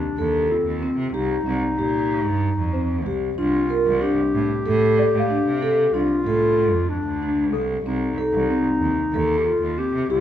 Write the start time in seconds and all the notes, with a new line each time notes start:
Already playing: D4 G4
0.17 D#2 A4
0.50 C4 F4
0.66 D#2
0.82 C4
0.98 C3
1.13 C2 D#4 G4
1.46 C2 C4
1.77 A#2 G4
2.26 G2
2.58 F2
2.73 C4 C5
3.06 C2 G4
3.38 C2 D4 F4
3.70 A#4
3.86 C2
4.02 D4 G4
4.34 A2
4.66 A2 A4
4.99 D5
5.14 A2
5.19 F5
5.30 D4
5.46 C3
5.62 A4
5.94 C2 D4 F4
6.26 A2 A4
6.73 F2
6.90 D4
7.06 D2
7.22 D4
7.53 C2 A4
7.85 C2 C4 D#4
8.18 A4
8.33 C2
8.50 C4
8.81 D#2
9.13 D#2 A4
9.39 G4
9.46 F4
9.62 D#2
9.78 C4 G4
9.94 C3
10.10 C2 F4 G4